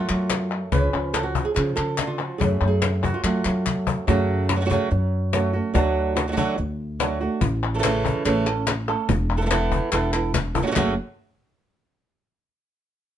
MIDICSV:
0, 0, Header, 1, 7, 480
1, 0, Start_track
1, 0, Key_signature, 3, "minor"
1, 0, Tempo, 418118
1, 831, Time_signature, 4, 2, 24, 8
1, 4678, Key_signature, 3, "minor"
1, 15121, End_track
2, 0, Start_track
2, 0, Title_t, "Nylon-string guitar"
2, 0, Program_c, 0, 24
2, 0, Note_on_c, 0, 42, 76
2, 0, Note_on_c, 0, 57, 59
2, 0, Note_on_c, 0, 65, 87
2, 104, Note_on_c, 0, 66, 92
2, 588, Note_off_c, 0, 65, 0
2, 805, Note_off_c, 0, 57, 0
2, 823, Note_off_c, 0, 66, 0
2, 827, Note_on_c, 0, 71, 102
2, 834, Note_off_c, 0, 42, 0
2, 842, Note_on_c, 0, 49, 78
2, 849, Note_on_c, 0, 53, 52
2, 854, Note_on_c, 0, 61, 50
2, 1059, Note_off_c, 0, 53, 0
2, 1073, Note_on_c, 0, 53, 65
2, 1077, Note_off_c, 0, 49, 0
2, 1298, Note_off_c, 0, 61, 0
2, 1303, Note_on_c, 0, 69, 96
2, 1410, Note_off_c, 0, 71, 0
2, 1414, Note_on_c, 0, 66, 86
2, 1428, Note_off_c, 0, 69, 0
2, 1554, Note_off_c, 0, 53, 0
2, 1569, Note_on_c, 0, 53, 50
2, 1662, Note_on_c, 0, 68, 90
2, 1664, Note_off_c, 0, 66, 0
2, 1760, Note_off_c, 0, 68, 0
2, 1774, Note_on_c, 0, 68, 81
2, 1791, Note_off_c, 0, 53, 0
2, 1805, Note_on_c, 0, 53, 67
2, 2011, Note_off_c, 0, 68, 0
2, 2016, Note_on_c, 0, 69, 98
2, 2280, Note_off_c, 0, 53, 0
2, 2287, Note_on_c, 0, 50, 70
2, 2378, Note_on_c, 0, 65, 79
2, 2386, Note_off_c, 0, 69, 0
2, 2498, Note_on_c, 0, 66, 87
2, 2519, Note_on_c, 0, 53, 66
2, 2521, Note_off_c, 0, 50, 0
2, 2736, Note_on_c, 0, 68, 85
2, 2747, Note_off_c, 0, 66, 0
2, 2748, Note_off_c, 0, 65, 0
2, 2757, Note_on_c, 0, 42, 81
2, 2758, Note_off_c, 0, 53, 0
2, 2765, Note_on_c, 0, 57, 49
2, 2776, Note_on_c, 0, 61, 51
2, 2990, Note_off_c, 0, 57, 0
2, 3004, Note_on_c, 0, 57, 62
2, 3058, Note_off_c, 0, 68, 0
2, 3072, Note_on_c, 0, 68, 93
2, 3484, Note_on_c, 0, 66, 90
2, 3595, Note_off_c, 0, 68, 0
2, 3604, Note_on_c, 0, 65, 76
2, 3709, Note_off_c, 0, 57, 0
2, 3710, Note_off_c, 0, 66, 0
2, 3722, Note_on_c, 0, 57, 62
2, 3727, Note_on_c, 0, 66, 70
2, 3962, Note_off_c, 0, 61, 0
2, 3976, Note_on_c, 0, 61, 47
2, 4202, Note_off_c, 0, 65, 0
2, 4653, Note_off_c, 0, 57, 0
2, 4659, Note_off_c, 0, 61, 0
2, 4675, Note_on_c, 0, 49, 94
2, 4682, Note_off_c, 0, 66, 0
2, 4682, Note_on_c, 0, 54, 96
2, 4685, Note_on_c, 0, 57, 95
2, 4692, Note_on_c, 0, 61, 100
2, 4697, Note_on_c, 0, 66, 104
2, 5142, Note_off_c, 0, 66, 0
2, 5147, Note_off_c, 0, 49, 0
2, 5149, Note_off_c, 0, 61, 0
2, 5151, Note_off_c, 0, 54, 0
2, 5153, Note_off_c, 0, 57, 0
2, 5156, Note_on_c, 0, 66, 61
2, 5163, Note_on_c, 0, 61, 54
2, 5174, Note_on_c, 0, 57, 53
2, 5228, Note_off_c, 0, 57, 0
2, 5233, Note_off_c, 0, 61, 0
2, 5235, Note_on_c, 0, 54, 63
2, 5238, Note_off_c, 0, 66, 0
2, 5242, Note_on_c, 0, 57, 62
2, 5247, Note_on_c, 0, 61, 59
2, 5252, Note_on_c, 0, 66, 59
2, 5273, Note_off_c, 0, 54, 0
2, 5280, Note_off_c, 0, 57, 0
2, 5283, Note_off_c, 0, 61, 0
2, 5286, Note_on_c, 0, 54, 60
2, 5289, Note_off_c, 0, 66, 0
2, 5294, Note_on_c, 0, 57, 78
2, 5297, Note_on_c, 0, 61, 64
2, 5303, Note_on_c, 0, 66, 77
2, 5325, Note_off_c, 0, 54, 0
2, 5333, Note_off_c, 0, 57, 0
2, 5333, Note_off_c, 0, 61, 0
2, 5339, Note_on_c, 0, 54, 74
2, 5343, Note_off_c, 0, 66, 0
2, 5347, Note_on_c, 0, 57, 84
2, 5347, Note_on_c, 0, 61, 81
2, 5356, Note_on_c, 0, 66, 93
2, 5384, Note_off_c, 0, 54, 0
2, 5386, Note_off_c, 0, 57, 0
2, 5390, Note_off_c, 0, 61, 0
2, 5391, Note_on_c, 0, 49, 95
2, 5393, Note_off_c, 0, 66, 0
2, 5397, Note_on_c, 0, 54, 81
2, 5400, Note_on_c, 0, 57, 97
2, 5404, Note_on_c, 0, 61, 97
2, 5407, Note_on_c, 0, 66, 94
2, 5620, Note_off_c, 0, 49, 0
2, 5624, Note_off_c, 0, 54, 0
2, 5626, Note_off_c, 0, 57, 0
2, 5628, Note_off_c, 0, 61, 0
2, 5629, Note_off_c, 0, 66, 0
2, 6118, Note_on_c, 0, 54, 65
2, 6124, Note_on_c, 0, 57, 68
2, 6130, Note_on_c, 0, 61, 64
2, 6138, Note_on_c, 0, 66, 77
2, 6337, Note_off_c, 0, 66, 0
2, 6349, Note_off_c, 0, 54, 0
2, 6350, Note_off_c, 0, 61, 0
2, 6351, Note_on_c, 0, 66, 61
2, 6352, Note_off_c, 0, 57, 0
2, 6364, Note_on_c, 0, 61, 53
2, 6372, Note_on_c, 0, 57, 50
2, 6585, Note_off_c, 0, 66, 0
2, 6585, Note_on_c, 0, 50, 98
2, 6586, Note_off_c, 0, 57, 0
2, 6592, Note_off_c, 0, 61, 0
2, 6593, Note_on_c, 0, 54, 103
2, 6599, Note_off_c, 0, 42, 0
2, 6600, Note_on_c, 0, 57, 99
2, 6602, Note_on_c, 0, 62, 103
2, 6605, Note_on_c, 0, 66, 116
2, 7054, Note_off_c, 0, 66, 0
2, 7062, Note_off_c, 0, 50, 0
2, 7065, Note_off_c, 0, 62, 0
2, 7066, Note_off_c, 0, 54, 0
2, 7067, Note_on_c, 0, 66, 68
2, 7069, Note_off_c, 0, 57, 0
2, 7079, Note_on_c, 0, 62, 58
2, 7088, Note_on_c, 0, 57, 50
2, 7197, Note_off_c, 0, 57, 0
2, 7201, Note_off_c, 0, 62, 0
2, 7206, Note_on_c, 0, 54, 52
2, 7207, Note_off_c, 0, 66, 0
2, 7211, Note_on_c, 0, 57, 59
2, 7214, Note_on_c, 0, 62, 57
2, 7221, Note_on_c, 0, 66, 61
2, 7240, Note_off_c, 0, 54, 0
2, 7248, Note_off_c, 0, 57, 0
2, 7254, Note_off_c, 0, 62, 0
2, 7254, Note_on_c, 0, 54, 73
2, 7255, Note_off_c, 0, 66, 0
2, 7262, Note_on_c, 0, 57, 77
2, 7268, Note_on_c, 0, 62, 81
2, 7269, Note_on_c, 0, 66, 89
2, 7300, Note_off_c, 0, 54, 0
2, 7302, Note_off_c, 0, 57, 0
2, 7307, Note_off_c, 0, 62, 0
2, 7307, Note_off_c, 0, 66, 0
2, 7310, Note_on_c, 0, 50, 84
2, 7314, Note_on_c, 0, 54, 90
2, 7316, Note_on_c, 0, 57, 90
2, 7321, Note_on_c, 0, 62, 96
2, 7321, Note_on_c, 0, 66, 101
2, 7537, Note_off_c, 0, 50, 0
2, 7537, Note_off_c, 0, 54, 0
2, 7541, Note_off_c, 0, 57, 0
2, 7545, Note_off_c, 0, 66, 0
2, 7547, Note_off_c, 0, 62, 0
2, 8029, Note_on_c, 0, 54, 67
2, 8033, Note_on_c, 0, 57, 73
2, 8043, Note_on_c, 0, 62, 73
2, 8049, Note_on_c, 0, 66, 78
2, 8258, Note_off_c, 0, 66, 0
2, 8264, Note_off_c, 0, 54, 0
2, 8266, Note_off_c, 0, 57, 0
2, 8270, Note_off_c, 0, 62, 0
2, 8272, Note_on_c, 0, 66, 62
2, 8283, Note_on_c, 0, 62, 55
2, 8293, Note_on_c, 0, 57, 54
2, 8505, Note_off_c, 0, 66, 0
2, 8511, Note_off_c, 0, 62, 0
2, 8515, Note_off_c, 0, 57, 0
2, 8890, Note_on_c, 0, 52, 64
2, 8893, Note_on_c, 0, 57, 65
2, 8899, Note_on_c, 0, 61, 60
2, 8901, Note_on_c, 0, 69, 68
2, 8923, Note_off_c, 0, 52, 0
2, 8932, Note_off_c, 0, 57, 0
2, 8934, Note_off_c, 0, 61, 0
2, 8937, Note_on_c, 0, 52, 78
2, 8940, Note_off_c, 0, 69, 0
2, 8945, Note_on_c, 0, 57, 82
2, 8948, Note_on_c, 0, 61, 86
2, 8954, Note_on_c, 0, 69, 92
2, 8981, Note_off_c, 0, 52, 0
2, 8983, Note_off_c, 0, 57, 0
2, 8987, Note_off_c, 0, 61, 0
2, 8990, Note_on_c, 0, 49, 96
2, 8993, Note_off_c, 0, 69, 0
2, 8995, Note_on_c, 0, 52, 107
2, 8997, Note_on_c, 0, 57, 105
2, 9001, Note_on_c, 0, 61, 101
2, 9007, Note_on_c, 0, 69, 111
2, 9454, Note_off_c, 0, 49, 0
2, 9463, Note_off_c, 0, 52, 0
2, 9467, Note_off_c, 0, 57, 0
2, 9468, Note_on_c, 0, 49, 91
2, 9469, Note_off_c, 0, 61, 0
2, 9471, Note_off_c, 0, 69, 0
2, 9476, Note_on_c, 0, 52, 93
2, 9484, Note_on_c, 0, 57, 99
2, 9488, Note_on_c, 0, 61, 94
2, 9492, Note_on_c, 0, 69, 89
2, 9702, Note_off_c, 0, 49, 0
2, 9702, Note_off_c, 0, 69, 0
2, 9706, Note_off_c, 0, 52, 0
2, 9710, Note_off_c, 0, 57, 0
2, 9712, Note_off_c, 0, 61, 0
2, 9716, Note_on_c, 0, 69, 60
2, 9725, Note_on_c, 0, 61, 60
2, 9739, Note_on_c, 0, 57, 56
2, 9946, Note_off_c, 0, 69, 0
2, 9950, Note_off_c, 0, 57, 0
2, 9951, Note_off_c, 0, 61, 0
2, 10193, Note_on_c, 0, 69, 67
2, 10203, Note_on_c, 0, 61, 57
2, 10210, Note_on_c, 0, 57, 53
2, 10424, Note_off_c, 0, 69, 0
2, 10429, Note_off_c, 0, 61, 0
2, 10433, Note_off_c, 0, 57, 0
2, 10758, Note_on_c, 0, 52, 57
2, 10761, Note_on_c, 0, 59, 64
2, 10768, Note_on_c, 0, 64, 67
2, 10768, Note_on_c, 0, 69, 70
2, 10793, Note_off_c, 0, 52, 0
2, 10799, Note_off_c, 0, 59, 0
2, 10804, Note_off_c, 0, 64, 0
2, 10807, Note_on_c, 0, 52, 73
2, 10810, Note_off_c, 0, 69, 0
2, 10813, Note_on_c, 0, 59, 66
2, 10817, Note_on_c, 0, 64, 82
2, 10824, Note_on_c, 0, 69, 82
2, 10846, Note_off_c, 0, 52, 0
2, 10849, Note_off_c, 0, 59, 0
2, 10854, Note_off_c, 0, 64, 0
2, 10856, Note_off_c, 0, 69, 0
2, 10860, Note_on_c, 0, 52, 82
2, 10863, Note_on_c, 0, 59, 90
2, 10868, Note_on_c, 0, 64, 89
2, 10870, Note_on_c, 0, 69, 85
2, 10897, Note_off_c, 0, 52, 0
2, 10903, Note_off_c, 0, 59, 0
2, 10908, Note_off_c, 0, 64, 0
2, 10910, Note_off_c, 0, 69, 0
2, 10911, Note_on_c, 0, 52, 101
2, 10917, Note_on_c, 0, 59, 100
2, 10921, Note_on_c, 0, 64, 98
2, 10924, Note_on_c, 0, 69, 109
2, 11371, Note_off_c, 0, 52, 0
2, 11380, Note_off_c, 0, 59, 0
2, 11385, Note_on_c, 0, 52, 86
2, 11388, Note_off_c, 0, 64, 0
2, 11389, Note_off_c, 0, 69, 0
2, 11394, Note_on_c, 0, 59, 90
2, 11401, Note_on_c, 0, 64, 91
2, 11407, Note_on_c, 0, 69, 100
2, 11611, Note_off_c, 0, 69, 0
2, 11619, Note_off_c, 0, 52, 0
2, 11624, Note_off_c, 0, 59, 0
2, 11625, Note_off_c, 0, 64, 0
2, 11625, Note_on_c, 0, 69, 67
2, 11639, Note_on_c, 0, 64, 56
2, 11647, Note_on_c, 0, 59, 50
2, 11859, Note_off_c, 0, 59, 0
2, 11859, Note_off_c, 0, 69, 0
2, 11866, Note_off_c, 0, 64, 0
2, 12106, Note_on_c, 0, 69, 62
2, 12117, Note_on_c, 0, 64, 56
2, 12124, Note_on_c, 0, 59, 55
2, 12197, Note_on_c, 0, 49, 62
2, 12199, Note_off_c, 0, 59, 0
2, 12200, Note_on_c, 0, 54, 68
2, 12201, Note_off_c, 0, 64, 0
2, 12204, Note_on_c, 0, 57, 72
2, 12206, Note_on_c, 0, 61, 72
2, 12207, Note_off_c, 0, 69, 0
2, 12212, Note_on_c, 0, 66, 64
2, 12232, Note_off_c, 0, 49, 0
2, 12237, Note_off_c, 0, 54, 0
2, 12240, Note_off_c, 0, 57, 0
2, 12243, Note_off_c, 0, 61, 0
2, 12246, Note_off_c, 0, 66, 0
2, 12246, Note_on_c, 0, 49, 67
2, 12251, Note_on_c, 0, 54, 76
2, 12254, Note_on_c, 0, 57, 80
2, 12257, Note_on_c, 0, 61, 78
2, 12259, Note_on_c, 0, 66, 82
2, 12287, Note_off_c, 0, 49, 0
2, 12288, Note_off_c, 0, 54, 0
2, 12295, Note_off_c, 0, 57, 0
2, 12296, Note_off_c, 0, 66, 0
2, 12298, Note_off_c, 0, 61, 0
2, 12301, Note_on_c, 0, 49, 91
2, 12302, Note_on_c, 0, 54, 97
2, 12308, Note_on_c, 0, 57, 86
2, 12310, Note_on_c, 0, 66, 96
2, 12311, Note_on_c, 0, 61, 97
2, 12341, Note_off_c, 0, 49, 0
2, 12343, Note_off_c, 0, 54, 0
2, 12346, Note_off_c, 0, 57, 0
2, 12349, Note_on_c, 0, 42, 98
2, 12350, Note_off_c, 0, 61, 0
2, 12352, Note_off_c, 0, 66, 0
2, 12354, Note_on_c, 0, 49, 101
2, 12356, Note_on_c, 0, 54, 107
2, 12360, Note_on_c, 0, 57, 105
2, 12364, Note_on_c, 0, 61, 105
2, 12366, Note_on_c, 0, 66, 113
2, 12542, Note_off_c, 0, 42, 0
2, 12545, Note_off_c, 0, 49, 0
2, 12546, Note_off_c, 0, 54, 0
2, 12548, Note_off_c, 0, 57, 0
2, 12549, Note_off_c, 0, 61, 0
2, 12551, Note_off_c, 0, 66, 0
2, 15121, End_track
3, 0, Start_track
3, 0, Title_t, "Oud"
3, 0, Program_c, 1, 24
3, 827, Note_on_c, 1, 61, 98
3, 2736, Note_off_c, 1, 61, 0
3, 2750, Note_on_c, 1, 61, 92
3, 4390, Note_off_c, 1, 61, 0
3, 15121, End_track
4, 0, Start_track
4, 0, Title_t, "Upright bass"
4, 0, Program_c, 2, 32
4, 107, Note_on_c, 2, 54, 99
4, 692, Note_off_c, 2, 54, 0
4, 826, Note_on_c, 2, 37, 115
4, 1023, Note_off_c, 2, 37, 0
4, 1070, Note_on_c, 2, 37, 90
4, 1655, Note_off_c, 2, 37, 0
4, 1797, Note_on_c, 2, 49, 111
4, 1990, Note_off_c, 2, 49, 0
4, 2035, Note_on_c, 2, 49, 94
4, 2619, Note_off_c, 2, 49, 0
4, 2758, Note_on_c, 2, 42, 101
4, 2952, Note_off_c, 2, 42, 0
4, 2996, Note_on_c, 2, 42, 93
4, 3580, Note_off_c, 2, 42, 0
4, 3714, Note_on_c, 2, 54, 100
4, 3910, Note_off_c, 2, 54, 0
4, 3961, Note_on_c, 2, 54, 100
4, 4543, Note_off_c, 2, 54, 0
4, 4682, Note_on_c, 2, 42, 109
4, 5457, Note_off_c, 2, 42, 0
4, 5640, Note_on_c, 2, 42, 106
4, 6416, Note_off_c, 2, 42, 0
4, 6599, Note_on_c, 2, 38, 112
4, 7375, Note_off_c, 2, 38, 0
4, 7557, Note_on_c, 2, 38, 109
4, 8333, Note_off_c, 2, 38, 0
4, 8513, Note_on_c, 2, 33, 117
4, 9291, Note_off_c, 2, 33, 0
4, 9473, Note_on_c, 2, 33, 102
4, 10250, Note_off_c, 2, 33, 0
4, 10438, Note_on_c, 2, 28, 119
4, 11212, Note_off_c, 2, 28, 0
4, 11395, Note_on_c, 2, 28, 96
4, 12170, Note_off_c, 2, 28, 0
4, 12350, Note_on_c, 2, 30, 99
4, 12574, Note_off_c, 2, 30, 0
4, 15121, End_track
5, 0, Start_track
5, 0, Title_t, "Cajon"
5, 345, Note_on_c, 9, 38, 106
5, 460, Note_off_c, 9, 38, 0
5, 828, Note_on_c, 9, 36, 108
5, 943, Note_off_c, 9, 36, 0
5, 1309, Note_on_c, 9, 38, 98
5, 1424, Note_off_c, 9, 38, 0
5, 1551, Note_on_c, 9, 36, 80
5, 1666, Note_off_c, 9, 36, 0
5, 1792, Note_on_c, 9, 38, 32
5, 1906, Note_off_c, 9, 38, 0
5, 2279, Note_on_c, 9, 38, 100
5, 2394, Note_off_c, 9, 38, 0
5, 2520, Note_on_c, 9, 38, 30
5, 2635, Note_off_c, 9, 38, 0
5, 2768, Note_on_c, 9, 36, 109
5, 2882, Note_off_c, 9, 36, 0
5, 3238, Note_on_c, 9, 38, 107
5, 3353, Note_off_c, 9, 38, 0
5, 3490, Note_on_c, 9, 36, 76
5, 3605, Note_off_c, 9, 36, 0
5, 3971, Note_on_c, 9, 38, 102
5, 4086, Note_off_c, 9, 38, 0
5, 4211, Note_on_c, 9, 36, 71
5, 4326, Note_off_c, 9, 36, 0
5, 4443, Note_on_c, 9, 36, 99
5, 4557, Note_off_c, 9, 36, 0
5, 4684, Note_on_c, 9, 36, 113
5, 4684, Note_on_c, 9, 38, 36
5, 4798, Note_off_c, 9, 36, 0
5, 4798, Note_off_c, 9, 38, 0
5, 5156, Note_on_c, 9, 38, 110
5, 5271, Note_off_c, 9, 38, 0
5, 5406, Note_on_c, 9, 36, 82
5, 5521, Note_off_c, 9, 36, 0
5, 5655, Note_on_c, 9, 38, 35
5, 5770, Note_off_c, 9, 38, 0
5, 6120, Note_on_c, 9, 38, 108
5, 6235, Note_off_c, 9, 38, 0
5, 6601, Note_on_c, 9, 36, 114
5, 6601, Note_on_c, 9, 38, 37
5, 6715, Note_off_c, 9, 36, 0
5, 6715, Note_off_c, 9, 38, 0
5, 7080, Note_on_c, 9, 38, 104
5, 7195, Note_off_c, 9, 38, 0
5, 7320, Note_on_c, 9, 36, 82
5, 7434, Note_off_c, 9, 36, 0
5, 7554, Note_on_c, 9, 38, 35
5, 7669, Note_off_c, 9, 38, 0
5, 8037, Note_on_c, 9, 38, 117
5, 8152, Note_off_c, 9, 38, 0
5, 8278, Note_on_c, 9, 38, 32
5, 8393, Note_off_c, 9, 38, 0
5, 8510, Note_on_c, 9, 36, 120
5, 8624, Note_off_c, 9, 36, 0
5, 8997, Note_on_c, 9, 38, 109
5, 9112, Note_off_c, 9, 38, 0
5, 9247, Note_on_c, 9, 36, 85
5, 9362, Note_off_c, 9, 36, 0
5, 9954, Note_on_c, 9, 38, 120
5, 10069, Note_off_c, 9, 38, 0
5, 10433, Note_on_c, 9, 36, 121
5, 10548, Note_off_c, 9, 36, 0
5, 10914, Note_on_c, 9, 38, 113
5, 11029, Note_off_c, 9, 38, 0
5, 11155, Note_on_c, 9, 36, 84
5, 11269, Note_off_c, 9, 36, 0
5, 11400, Note_on_c, 9, 38, 86
5, 11515, Note_off_c, 9, 38, 0
5, 11872, Note_on_c, 9, 36, 112
5, 11986, Note_off_c, 9, 36, 0
5, 12113, Note_on_c, 9, 36, 98
5, 12228, Note_off_c, 9, 36, 0
5, 12355, Note_on_c, 9, 36, 104
5, 12470, Note_off_c, 9, 36, 0
5, 15121, End_track
6, 0, Start_track
6, 0, Title_t, "Muted nylon-string guitar strokes"
6, 5633, Note_on_c, 9, 29, 77
6, 5748, Note_off_c, 9, 29, 0
6, 7551, Note_on_c, 9, 29, 78
6, 7666, Note_off_c, 9, 29, 0
6, 8513, Note_on_c, 9, 29, 86
6, 8628, Note_off_c, 9, 29, 0
6, 9959, Note_on_c, 9, 29, 83
6, 10074, Note_off_c, 9, 29, 0
6, 10438, Note_on_c, 9, 29, 93
6, 10553, Note_off_c, 9, 29, 0
6, 11872, Note_on_c, 9, 29, 85
6, 11987, Note_off_c, 9, 29, 0
6, 15121, End_track
7, 0, Start_track
7, 0, Title_t, "Drums"
7, 103, Note_on_c, 9, 39, 74
7, 218, Note_off_c, 9, 39, 0
7, 343, Note_on_c, 9, 39, 93
7, 458, Note_off_c, 9, 39, 0
7, 588, Note_on_c, 9, 39, 50
7, 703, Note_off_c, 9, 39, 0
7, 1315, Note_on_c, 9, 39, 85
7, 1430, Note_off_c, 9, 39, 0
7, 1796, Note_on_c, 9, 39, 80
7, 1911, Note_off_c, 9, 39, 0
7, 2033, Note_on_c, 9, 39, 75
7, 2148, Note_off_c, 9, 39, 0
7, 2269, Note_on_c, 9, 39, 90
7, 2383, Note_off_c, 9, 39, 0
7, 3239, Note_on_c, 9, 39, 83
7, 3354, Note_off_c, 9, 39, 0
7, 3719, Note_on_c, 9, 39, 90
7, 3834, Note_off_c, 9, 39, 0
7, 3957, Note_on_c, 9, 39, 71
7, 4072, Note_off_c, 9, 39, 0
7, 4203, Note_on_c, 9, 39, 90
7, 4318, Note_off_c, 9, 39, 0
7, 8994, Note_on_c, 9, 39, 98
7, 9108, Note_off_c, 9, 39, 0
7, 9480, Note_on_c, 9, 39, 91
7, 9595, Note_off_c, 9, 39, 0
7, 9718, Note_on_c, 9, 39, 74
7, 9833, Note_off_c, 9, 39, 0
7, 9955, Note_on_c, 9, 39, 99
7, 10070, Note_off_c, 9, 39, 0
7, 10917, Note_on_c, 9, 39, 94
7, 11032, Note_off_c, 9, 39, 0
7, 11390, Note_on_c, 9, 39, 95
7, 11505, Note_off_c, 9, 39, 0
7, 11633, Note_on_c, 9, 39, 82
7, 11748, Note_off_c, 9, 39, 0
7, 11878, Note_on_c, 9, 39, 98
7, 11993, Note_off_c, 9, 39, 0
7, 12349, Note_on_c, 9, 39, 101
7, 12464, Note_off_c, 9, 39, 0
7, 15121, End_track
0, 0, End_of_file